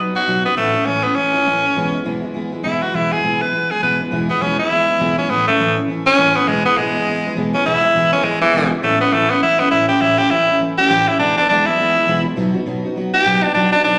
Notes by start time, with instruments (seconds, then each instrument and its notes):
Already playing: steel-string acoustic guitar F#3
0.00 steel-string acoustic guitar B3 D#4 F#4
0.16 steel-string acoustic guitar D#4, tenor saxophone F#4
0.27 steel-string acoustic guitar B2 F#3 B3 D#4 F#4
0.44 tenor saxophone B3, steel-string acoustic guitar B3 D#4 F#4
0.56 steel-string acoustic guitar A2 E3 A3 C#4 E4, tenor saxophone A3
0.74 steel-string acoustic guitar A3 C#4 E4
0.86 steel-string acoustic guitar A2 E3 A3 C#4 E4, tenor saxophone C#4
1.03 steel-string acoustic guitar A3 C#4 E4, tenor saxophone B3
1.15 steel-string acoustic guitar E3 A3 C#4 E4, tenor saxophone C#4
1.34 steel-string acoustic guitar A3 C#4 E4
1.46 steel-string acoustic guitar A2 E3 A3 C#4 E4
1.63 steel-string acoustic guitar A3 C#4 E4
1.76 steel-string acoustic guitar E2 B2 E3 G#3 B3 E4
1.93 steel-string acoustic guitar E3 G#3 B3 E4
2.04 steel-string acoustic guitar E2 B2 E3 G#3 B3 E4
2.22 steel-string acoustic guitar E3 G#3 B3 E4
2.34 steel-string acoustic guitar E3 G#3 B3 E4
2.52 steel-string acoustic guitar E3 G#3 B3 E4
2.63 steel-string acoustic guitar E2 B2 E3 G#3 B3 E4, tenor saxophone E4
2.82 steel-string acoustic guitar E3 G#3 B3 E4, tenor saxophone F#4
2.93 steel-string acoustic guitar E2 B2 E3 G#3 B3 E4, tenor saxophone E4
3.11 steel-string acoustic guitar E3 G#3 B3 E4, tenor saxophone G#4
3.23 steel-string acoustic guitar E2 B2 E3 G#3 B3 E4
3.41 steel-string acoustic guitar E3 G#3 B3 E4, tenor saxophone B4
3.53 steel-string acoustic guitar E3 G#3 B3 E4
3.70 steel-string acoustic guitar E3 G#3 B3 E4, tenor saxophone G#4
3.81 steel-string acoustic guitar E2 B2 E3 G#3 B3 E4, tenor saxophone B4
4.00 steel-string acoustic guitar E3 G#3 E4
4.11 steel-string acoustic guitar E2 B2 E3 G#3 B3 E4
4.29 steel-string acoustic guitar E3 G#3 B3 E4, tenor saxophone B3
4.41 steel-string acoustic guitar E2 B2 E3 G#3 B3 E4, tenor saxophone C#4
4.59 steel-string acoustic guitar E3 G#3 B3 E4, tenor saxophone E4
4.70 steel-string acoustic guitar E3 G#3 B3 E4
4.89 steel-string acoustic guitar E3 G#3 B3
4.99 steel-string acoustic guitar E2 B2 E3 G#3 B3 E4
5.17 steel-string acoustic guitar E3 G#3 B3 E4, tenor saxophone C#4
5.29 steel-string acoustic guitar A2 E3 A3 C#4 E4, tenor saxophone B3
5.47 tenor saxophone A3, steel-string acoustic guitar A3 C#4 E4
5.59 steel-string acoustic guitar A2 E3 A3 C#4 E4
5.76 steel-string acoustic guitar A3 C#4 E4
5.88 steel-string acoustic guitar E3 A3 C#4 E4
6.06 steel-string acoustic guitar A3 C#4 E4, tenor saxophone C#4
6.18 steel-string acoustic guitar A2 E3 A3 C#4 E4
6.35 steel-string acoustic guitar A3 C#4 E4, tenor saxophone B3
6.47 steel-string acoustic guitar E2 B2 E3 G#3 B3 E4, tenor saxophone G#3
6.65 steel-string acoustic guitar E3 G#3 B3 E4, tenor saxophone B3
6.77 steel-string acoustic guitar E2 B2 E3 G#3 B3 E4, tenor saxophone G#3
6.94 steel-string acoustic guitar E3 G#3 B3 E4
7.07 steel-string acoustic guitar E3 G#3 B3 E4
7.25 steel-string acoustic guitar E3 G#3 B3 E4
7.36 steel-string acoustic guitar E2 B2 E3 G#3 B3 E4
7.53 steel-string acoustic guitar E3 G#3 B3 E4, tenor saxophone C#4
7.65 steel-string acoustic guitar E2 B2 E3 G#3 B3 E4, tenor saxophone E4
7.82 steel-string acoustic guitar E3 G#3 B3 E4
7.94 steel-string acoustic guitar E2 B2 E3 G#3 B3 E4
8.12 steel-string acoustic guitar E3 G#3 B3 E4, tenor saxophone C#4
8.23 steel-string acoustic guitar E3 G#3 B3 E4, tenor saxophone G#3
8.41 tenor saxophone E3, steel-string acoustic guitar E3 G#3 B3 E4
8.53 steel-string acoustic guitar E2 B2 E3 G#3 B3 E4
8.71 steel-string acoustic guitar E3 G#3 B3 E4
8.82 steel-string acoustic guitar A2 E3 A3 C#4 E4, tenor saxophone A3
9.00 steel-string acoustic guitar A3 C#4 E4, tenor saxophone B3
9.12 steel-string acoustic guitar A2 E3 A3 C#4 E4, tenor saxophone A3
9.30 steel-string acoustic guitar A3 C#4, tenor saxophone B3
9.41 steel-string acoustic guitar E3 A3 C#4, tenor saxophone E4
9.58 steel-string acoustic guitar A3 C#4 E4, tenor saxophone B3
9.71 steel-string acoustic guitar A2 E3 A3 C#4 E4, tenor saxophone E4
9.88 steel-string acoustic guitar A3 C#4 E4, tenor saxophone G4
10.00 steel-string acoustic guitar A2 E3 A3 C#4 E4, tenor saxophone E4
10.18 steel-string acoustic guitar A3 C#4 E4, tenor saxophone G4
10.30 steel-string acoustic guitar A2 E3 A3 C#4 E4, tenor saxophone E4
10.47 steel-string acoustic guitar A3 C#4 E4
10.60 steel-string acoustic guitar E3 A3 C#4 E4
10.78 steel-string acoustic guitar A3 C#4 E4, tenor saxophone G4
10.89 steel-string acoustic guitar A2 E3 A3 C#4 E4
11.07 steel-string acoustic guitar A3 C#4 E4, tenor saxophone E4
11.19 steel-string acoustic guitar E2 B2 E3 G#3 B3 E4, tenor saxophone D4
11.37 steel-string acoustic guitar E3 G#3 B3 E4, tenor saxophone D4
11.49 steel-string acoustic guitar E2 B2 E3 G#3 B3 E4, tenor saxophone D4
11.66 steel-string acoustic guitar E3 G#3 B3 E4, tenor saxophone E4
11.77 steel-string acoustic guitar E3 G#3 B3 E4
11.95 steel-string acoustic guitar E3 G#3 E4
12.07 steel-string acoustic guitar E2 B2 E3 G#3 B3 E4
12.25 steel-string acoustic guitar E3 G#3 B3 E4
12.36 steel-string acoustic guitar B2 F#3 B3 D#4 F#4
12.54 steel-string acoustic guitar B3 D#4 F#4
12.66 steel-string acoustic guitar B2 F#3 B3 D#4 F#4
12.84 steel-string acoustic guitar B3 D#4 F#4
12.96 steel-string acoustic guitar F#3 B3 D#4 F#4
13.13 steel-string acoustic guitar B3 D#4 F#4, tenor saxophone G4
13.25 steel-string acoustic guitar B2 F#3 B3 D#4 F#4
13.42 steel-string acoustic guitar B3 D#4 F#4, tenor saxophone D4
13.54 steel-string acoustic guitar B2 F#3 B3 D#4 F#4, tenor saxophone D4
13.72 steel-string acoustic guitar B3 D#4 F#4, tenor saxophone D4
13.83 steel-string acoustic guitar B2 F#3 B3 D#4 F#4, tenor saxophone D4